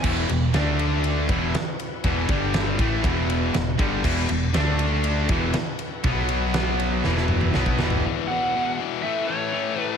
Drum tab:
CC |x---------------|----------------|x---------------|----------------|
RD |--x-x-x-x-x-x-x-|x-x-x-x-x-x-x-x-|--x-x-x-x-x-x-x-|x-x-x-x---------|
SD |----o-------o---|----o-------o---|----o-------o---|----o---oo--o-o-|
T2 |----------------|----------------|----------------|----------oo----|
FT |----------------|----------------|----------------|---------------o|
BD |o---------o-----|o-o---o-o-----o-|o---------o-----|o------------o--|

CC |----------------|
RD |----------------|
SD |----------------|
T2 |----------------|
FT |----------------|
BD |----------------|